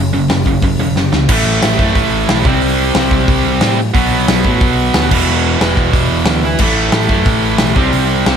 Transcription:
Already playing: distorted electric guitar F#2 C#3
0.13 picked electric bass F#1, distorted electric guitar F#2 C#3
0.28 picked electric bass F#1, distorted electric guitar F#2 C#3, snare, open hi-hat
0.45 picked electric bass F#1, distorted electric guitar F#2 C#3, kick
0.62 picked electric bass F#1, distorted electric guitar F#2 C#3, kick, open hi-hat
0.79 picked electric bass E1, distorted electric guitar F#2 C#3
0.95 picked electric bass F#1, distorted electric guitar F#2 C#3, snare
1.13 picked electric bass C#2, distorted electric guitar F#2 C#3, snare
1.29 picked electric bass A1, distorted electric guitar A2 E3, kick, crash
1.34 distorted electric guitar A3
1.46 picked electric bass A1
1.62 picked electric bass A1, snare, open hi-hat
1.78 picked electric bass F#2, distorted electric guitar A2 E3 A3, kick
1.95 picked electric bass A1, kick, open hi-hat
2.29 picked electric bass B1, snare, open hi-hat
2.45 picked electric bass C2, distorted electric guitar C3 G3, kick
2.49 distorted electric guitar C4
2.62 picked electric bass C2, open hi-hat
2.94 picked electric bass C2, distorted electric guitar C3 G3, snare, open hi-hat
2.98 distorted electric guitar C4
3.11 picked electric bass C2, kick
3.28 picked electric bass C2, kick, open hi-hat
3.46 picked electric bass C2
3.61 picked electric bass A2, snare, open hi-hat
3.94 picked electric bass B1, distorted electric guitar B2 F#3, kick, open hi-hat
3.99 distorted electric guitar B3
4.12 picked electric bass B1
4.28 picked electric bass B1, snare, open hi-hat
4.44 picked electric bass A2, distorted electric guitar B2 F#3 B3, kick
4.61 picked electric bass B1, kick, open hi-hat
4.94 picked electric bass D2, snare, open hi-hat
5.10 picked electric bass E1, distorted electric guitar E2 B2 E3, kick, crash
5.27 picked electric bass E1
5.59 picked electric bass E1, distorted electric guitar E2 B2 E3, snare, open hi-hat
5.77 picked electric bass E1, kick
5.93 picked electric bass E1, kick, open hi-hat
6.10 picked electric bass E1
6.25 picked electric bass D2, snare, open hi-hat
6.59 picked electric bass A1, distorted electric guitar A2 E3, kick, crash
6.63 distorted electric guitar A3
6.76 picked electric bass A1
6.92 picked electric bass A1, snare, open hi-hat
7.09 picked electric bass F#2, distorted electric guitar E3 A3, kick
7.13 distorted electric guitar A2
7.26 picked electric bass A1, kick, open hi-hat
7.58 picked electric bass B1, snare, open hi-hat
7.76 picked electric bass C2, distorted electric guitar C3 G3 C4, kick
7.93 picked electric bass C2, open hi-hat
8.26 picked electric bass C2, distorted electric guitar C3 G3 C4, snare, open hi-hat

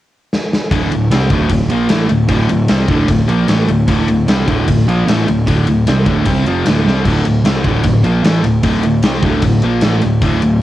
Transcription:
0.33 snare
0.53 snare
0.71 picked electric bass D1, distorted electric guitar D2 A2 D3, kick, ride
0.90 picked electric bass D1, distorted electric guitar D2 A2, ride
1.10 picked electric bass C2, distorted electric guitar C3 G3 C4, snare, ride
1.30 picked electric bass D1, distorted electric guitar D2 A2 D3, kick, ride
1.49 picked electric bass D1, distorted electric guitar D2 A2, kick, ride
1.69 picked electric bass A#1, distorted electric guitar A#2 F3 A#3, ride
1.89 picked electric bass A1, distorted electric guitar A2 E3 A3, snare, ride
2.09 picked electric bass D1, distorted electric guitar D2 A2, ride
2.29 picked electric bass D1, distorted electric guitar D2 A2 D3, kick, ride
2.49 picked electric bass D1, distorted electric guitar D2 A2, ride
2.68 picked electric bass C2, distorted electric guitar C3 G3 C4, snare, ride
2.88 picked electric bass D1, distorted electric guitar D2 A2 D3, kick, ride
3.08 picked electric bass D1, distorted electric guitar D2 A2, kick, ride
3.28 picked electric bass A#1, distorted electric guitar A#2 F3 A#3, ride
3.48 picked electric bass A1, distorted electric guitar A2 E3 A3, snare, ride
3.68 picked electric bass D1, distorted electric guitar D2 A2, ride
3.88 picked electric bass D1, distorted electric guitar D2 A2 D3, kick, ride
4.08 picked electric bass D1, distorted electric guitar D2 A2, ride
4.27 picked electric bass C2, distorted electric guitar C3 G3 C4, snare, ride
4.47 picked electric bass D1, distorted electric guitar D2 A2 D3, kick, ride
4.68 picked electric bass D1, distorted electric guitar D2 A2, kick, ride
4.87 picked electric bass A#1, distorted electric guitar A#2 F3 A#3, ride
5.06 picked electric bass A1, distorted electric guitar A2 E3 A3, snare, ride
5.27 picked electric bass D1, distorted electric guitar D2 A2, ride
5.47 picked electric bass D1, distorted electric guitar D2 A2 D3, kick, ride
5.67 picked electric bass D1, distorted electric guitar D2 A2, ride
5.87 picked electric bass C2, distorted electric guitar C3 G3 C4, snare, ride
6.06 picked electric bass D1, distorted electric guitar D2 A2 D3, kick, ride
6.25 picked electric bass C2, distorted electric guitar C3 G3 C4, kick, ride
6.46 picked electric bass F1, distorted electric guitar F2 C3 F3, ride
6.66 picked electric bass D1, distorted electric guitar D2 A2 D3, snare, ride
6.86 picked electric bass C2, distorted electric guitar C3 G3 C4, snare
7.05 picked electric bass D1, distorted electric guitar D2 A2 D3, kick, splash, crash
7.25 picked electric bass D1, distorted electric guitar D2 A2, ride
7.45 picked electric bass C2, distorted electric guitar C3 G3 C4, snare, ride
7.64 picked electric bass D1, distorted electric guitar D2 A2 D3, kick, ride
7.83 picked electric bass D1, distorted electric guitar D2 A2, kick, ride
8.04 picked electric bass A#1, distorted electric guitar A#2 F3 A#3, ride
8.23 picked electric bass A1, distorted electric guitar A2 E3 A3, snare, ride
8.44 picked electric bass D1, distorted electric guitar D2 A2, snare, ride
8.63 picked electric bass D1, distorted electric guitar D2 A2 D3, kick, ride
8.83 picked electric bass D1, distorted electric guitar D2 A2, ride
9.03 picked electric bass C2, distorted electric guitar C3 G3 C4, snare, ride
9.22 picked electric bass D1, distorted electric guitar D2 A2 D3, kick, ride
9.42 picked electric bass D1, distorted electric guitar D2 A2, kick, ride
9.62 picked electric bass A#1, distorted electric guitar A#2 F3 A#3, ride
9.81 picked electric bass A1, distorted electric guitar A2 E3 A3, snare, ride
10.02 picked electric bass D1, distorted electric guitar D2 A2, snare, ride
10.21 picked electric bass D1, distorted electric guitar D2 A2 D3, kick, ride
10.42 picked electric bass D1, distorted electric guitar D2 A2, ride

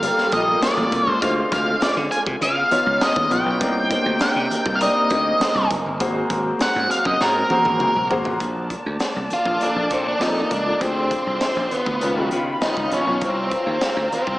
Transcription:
Already playing: grand piano G3 A#3 F4 A4, string section G3 A#3 F4 A4, lead electric guitar F5
0.03 grand piano G3 A#3 F4 A4, closed hi-hat, muted conga
0.18 snare
0.32 slap bass A#1, grand piano G3 A#3 F4 A4, lead electric guitar D#5, kick, closed hi-hat
0.61 lead electric guitar D5, snare, closed hi-hat, high conga
0.77 slap bass A1, high conga
0.91 slap bass C2, kick, closed hi-hat, high conga
1.07 slap bass C#2, lead electric guitar C5
1.21 slap bass D2, string section D3 G#3 C4, grand piano G#3 D4 D#4 C5, lead electric guitar F5, kick, closed hi-hat, muted conga
1.29 grand piano F4
1.52 slap bass D2, lead electric guitar F5, kick, closed hi-hat, muted conga
1.81 lead electric guitar D5, muted slap bass stroke, snare, closed hi-hat, high conga
1.97 slap bass D3
2.11 lead electric guitar G#5, closed hi-hat
2.27 slap bass C3, kick
2.41 slap bass C#3, string section C#3 B3, lead electric guitar F5, closed hi-hat, muted conga
2.71 grand piano B3 D#4 F4 C#5, closed hi-hat, muted conga, low conga
2.86 slap bass C#2
3.00 lead electric guitar D#5, snare, closed hi-hat, high conga
3.16 slap bass D#2, kick, high conga
3.30 slap bass A#1, grand piano B3 D#4 F4 C#5, lead electric guitar G5, closed hi-hat, high conga
3.46 slap bass B1
3.60 slap bass C2, string section C3 A#3 C4, grand piano A#3 D4 D#4 C5, kick, closed hi-hat, muted conga
3.90 grand piano A#3 D4 D#4 C5, kick, closed hi-hat, muted conga
4.06 slap bass D2
4.19 lead electric guitar G5, muted slap bass stroke, snare, closed hi-hat, high conga
4.36 slap bass C3
4.50 closed hi-hat, low conga
4.65 slap bass C2, kick
4.75 lead electric guitar F5
4.81 grand piano A#3 D4 D#4 D5, lead electric guitar D#5, closed hi-hat, muted conga
5.10 slap bass D2, grand piano A#3 C4 D#4 D#5, kick, closed hi-hat
5.40 snare, closed hi-hat, high conga
5.55 slap bass C2, high conga
5.70 slap bass F#1, kick, closed hi-hat, high conga
5.86 slap bass G1
5.99 slap bass G#1, string section F#3 G#3 C4, grand piano A#3 F#4 G#4 C5, kick, closed hi-hat, muted conga
6.30 slap bass G#1, kick, closed hi-hat, muted conga
6.59 lead electric guitar F#5, muted slap bass stroke, snare, closed hi-hat, high conga
6.76 slap bass G#2
6.91 lead electric guitar F5, closed hi-hat
7.05 slap bass F#2, lead electric guitar D#5, kick
7.21 slap bass G#2, lead electric guitar A#4, snare, muted conga
7.50 grand piano A#3 F#4 G#4 C5, high tom, low conga
7.65 slap bass G#1, high tom
7.79 mid tom, high conga
7.96 slap bass A#1, high conga
8.10 slap bass G#1, grand piano A#3 F#4 G#4 C5, floor tom, high conga
8.25 slap bass A1, floor tom
8.40 slap bass A#1, string section A#3 D5 A5, kick, closed hi-hat, muted conga
8.70 kick, closed hi-hat, muted conga
8.86 slap bass D2
8.99 snare, closed hi-hat, high conga
9.16 slap bass C2
9.30 lead electric guitar F4, closed hi-hat, low conga
9.45 slap bass A#1, kick
9.60 grand piano F3 A#3 D4 A4, lead electric guitar D4, closed hi-hat, muted conga
9.76 slap bass A#1, grand piano F3 A#3 D4 A4
9.90 slap bass A#2, lead electric guitar C4, kick, closed hi-hat
10.08 lead electric guitar D4
10.19 slap bass F2, grand piano F3 A#3 A4 D5, lead electric guitar D#4, snare, closed hi-hat, high conga
10.50 slap bass C#2, lead electric guitar D4, kick, closed hi-hat, high conga
10.65 grand piano F3 A#3 D4 A4
10.80 slap bass D2, grand piano F3 C4 D4 G#4, lead electric guitar C4, string section F4 D5 C6, kick, closed hi-hat, muted conga
11.11 kick, closed hi-hat, muted conga
11.27 slap bass C2
11.41 snare, closed hi-hat, high conga
11.56 slap bass A#1
11.71 lead electric guitar B3, closed hi-hat, low conga
11.86 slap bass D2, kick
12.00 slap bass C#2, grand piano D#3 B3 C#4 F4, string section F5 B5, closed hi-hat, muted conga
12.16 slap bass C#2, grand piano D#3 B3 C#4 F4
12.31 slap bass C#3, closed hi-hat, muted conga, low conga
12.61 grand piano D#3 B3 C#4 F4, lead electric guitar D#4, snare, closed hi-hat, high conga
12.77 slap bass C#2, kick
12.91 slap bass A#1, lead electric guitar C#4, closed hi-hat, high conga
13.06 slap bass B1, grand piano D#3 B3 C#4 F4
13.20 slap bass C2, string section D5 A#5, kick, closed hi-hat, muted conga
13.24 lead electric guitar C4
13.51 kick, closed hi-hat, muted conga
13.66 slap bass D#2
13.81 snare, closed hi-hat, high conga
13.97 slap bass D2
14.12 lead electric guitar C4, closed hi-hat, low conga
14.27 slap bass C2, kick

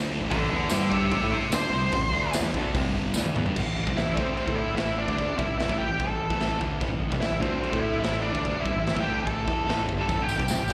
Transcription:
Already playing: fingered electric bass D2, distorted electric guitar D3 A3 D4
0.19 fingered electric bass A1, distorted electric guitar A2 E3
0.30 fingered electric bass A1, distorted electric guitar A2 E3 A3, lead electric guitar A4 D5, kick, open hi-hat
0.50 fingered electric bass E2, distorted electric guitar E3 B3 E4, lead electric guitar A4 D5
0.69 fingered electric bass G2, distorted electric guitar G3 D4, lead electric guitar A4 D5, snare, open hi-hat, tambourine
0.74 distorted electric guitar G4
0.91 lead electric guitar C5 E5, kick
1.11 fingered electric bass A1, distorted electric guitar A2 E3, lead electric guitar C5 E5, kick, open hi-hat
1.20 fingered electric bass A2, distorted electric guitar A3
1.24 distorted electric guitar E4
1.31 lead electric guitar C5 E5, muted fingered electric bass stroke, muted distorted electric guitar stroke
1.50 fingered electric bass D2, distorted electric guitar D3 A3 D4, snare, open hi-hat, tambourine
1.54 lead electric guitar C5
1.69 fingered electric bass C2, distorted electric guitar C3 G3 C4
1.92 fingered electric bass A1, distorted electric guitar A2 E3, kick, open hi-hat
2.11 fingered electric bass D2, distorted electric guitar D3 A3 D4
2.33 snare, open hi-hat, tambourine
2.41 fingered electric bass E2, distorted electric guitar E3 B3
2.54 fingered electric bass D2, distorted electric guitar D3 A3 D4, kick
2.74 fingered electric bass C2, distorted electric guitar C3 G3 C4, kick, open hi-hat
2.91 fingered electric bass G1
2.96 distorted electric guitar G2 D3 G3
3.14 fingered electric bass D2, distorted electric guitar D3 A3 D4, snare, tambourine
3.26 high tom
3.36 fingered electric bass E2, distorted electric guitar E3 B3, mid tom
3.46 fingered electric bass G2, distorted electric guitar G3 D4, floor tom
3.55 fingered electric bass A1, distorted electric guitar A2 E3, kick, crash
3.65 fingered electric bass A1, distorted electric guitar A2 E3
3.78 fingered electric bass A1, distorted electric guitar A2 E3
3.87 fingered electric bass C2, distorted electric guitar C3 G3, kick
3.96 fingered electric bass A1, distorted electric guitar A2 E3, lead electric guitar E4, snare, crash
4.06 fingered electric bass A1, distorted electric guitar A2 E3
4.14 fingered electric bass D2, distorted electric guitar D3 A3 D4, lead electric guitar C4, kick
4.37 lead electric guitar C4, crash
4.47 fingered electric bass A2, distorted electric guitar A3 E4 A4, kick
4.55 lead electric guitar E4
4.74 fingered electric bass A1, distorted electric guitar A2 E3 A3, lead electric guitar E4, snare, crash
4.98 lead electric guitar D4
5.08 fingered electric bass D2, distorted electric guitar D3 A3 D4, kick
5.18 kick, crash
5.28 muted fingered electric bass stroke, muted distorted electric guitar stroke
5.37 fingered electric bass C2, distorted electric guitar C3 G3, lead electric guitar E4, kick
5.47 fingered electric bass A1, distorted electric guitar A2 E3
5.58 lead electric guitar E4, snare, crash
5.67 fingered electric bass A1, distorted electric guitar A2 E3 A3, kick
5.78 lead electric guitar G4
5.87 fingered electric bass A1, distorted electric guitar A2 E3
5.98 fingered electric bass C2, distorted electric guitar C3 G3, lead electric guitar A4, kick, crash
6.07 fingered electric bass A1, distorted electric guitar A2 E3
6.30 fingered electric bass A1, distorted electric guitar A2 E3 A3, kick
6.40 snare, crash
6.59 fingered electric bass D2, distorted electric guitar D3 A3 D4, kick
6.80 fingered electric bass A1, distorted electric guitar A2 E3, kick, crash
6.87 fingered electric bass A1, distorted electric guitar A2 E3
6.98 fingered electric bass A1, distorted electric guitar A2 E3
7.09 fingered electric bass C2, distorted electric guitar C3 G3, kick
7.19 fingered electric bass A1, distorted electric guitar A2 E3, lead electric guitar E4, snare, crash
7.29 fingered electric bass A1, distorted electric guitar A2 E3
7.40 fingered electric bass D2, distorted electric guitar D3 A3 D4, lead electric guitar C4, kick
7.61 lead electric guitar C4, crash
7.70 fingered electric bass A2, distorted electric guitar A3 E4 A4, kick
7.80 lead electric guitar E4
7.99 fingered electric bass A1, distorted electric guitar A2 E3, lead electric guitar E4
8.03 distorted electric guitar A3, snare, crash
8.21 lead electric guitar D4
8.32 fingered electric bass D2, distorted electric guitar D3 A3 D4, kick
8.45 kick, crash
8.53 muted distorted electric guitar stroke, muted fingered electric bass stroke
8.60 distorted electric guitar C3 G3, lead electric guitar E4
8.65 fingered electric bass C2, kick
8.74 fingered electric bass A1, distorted electric guitar A2 E3
8.80 lead electric guitar E4
8.87 snare, crash
8.93 fingered electric bass A1, distorted electric guitar A2 E3, kick
9.00 fingered electric bass D2, distorted electric guitar D3 A3 D4, lead electric guitar G4
9.20 lead electric guitar A4
9.25 fingered electric bass A1, distorted electric guitar A2 E3 A3, kick, crash
9.46 fingered electric bass E2, distorted electric guitar E3 B3 E4, kick
9.66 fingered electric bass A1, distorted electric guitar A2 E3 A3, crash
9.70 snare
9.87 fingered electric bass G1, distorted electric guitar G2 D3, kick
9.97 fingered electric bass G2, distorted electric guitar G3 D4
10.01 lead electric guitar A4
10.06 fingered electric bass A1, distorted electric guitar A2 E3, kick, tambourine, crash
10.16 fingered electric bass A1, distorted electric guitar A2 E3
10.22 lead electric guitar G4
10.27 fingered electric bass A1, distorted electric guitar A2 E3, tambourine
10.38 fingered electric bass C2, distorted electric guitar C3 G3, kick
10.48 fingered electric bass A1, distorted electric guitar A2 E3, snare, tambourine, crash
10.57 fingered electric bass A1, distorted electric guitar A2 E3
10.68 fingered electric bass D2, distorted electric guitar D3 A3, tambourine

